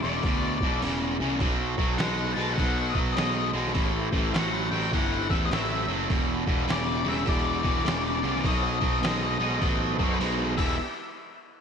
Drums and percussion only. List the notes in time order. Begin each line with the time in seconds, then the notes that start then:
0.23 kick, open hi-hat
0.61 kick
0.82 open hi-hat
1.40 kick, open hi-hat
1.78 kick
1.98 snare, open hi-hat
2.58 kick, open hi-hat
2.95 kick
3.17 snare, open hi-hat
3.67 snare
3.75 kick, open hi-hat
4.12 kick
4.34 snare, open hi-hat
4.93 kick, open hi-hat
5.30 kick
5.51 snare, open hi-hat
6.10 kick, open hi-hat
6.47 kick
6.69 snare, open hi-hat
7.27 kick, open hi-hat
7.65 kick
7.77 snare
7.86 snare, open hi-hat
8.36 snare
8.45 kick, open hi-hat
8.82 kick
9.03 snare, open hi-hat
9.62 kick, open hi-hat
9.99 kick
10.21 open hi-hat
10.58 kick, crash